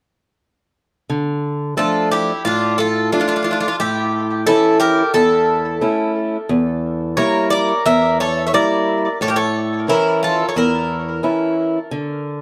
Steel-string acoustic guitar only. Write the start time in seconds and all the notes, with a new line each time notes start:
1.10 D3
1.77 F3 A3 D4
2.45 A2
3.13 A3 D4 F4
3.80 A2
4.47 E3 C#4 E4
5.14 E2
5.81 A3 C#4 E4
6.49 E2
7.17 G3 A#3 E4
7.86 E2
8.53 G3 A#3 E4
9.21 A2
9.88 E3 C#4 E4
10.56 E2
11.23 E3 C#4 E4
11.91 D3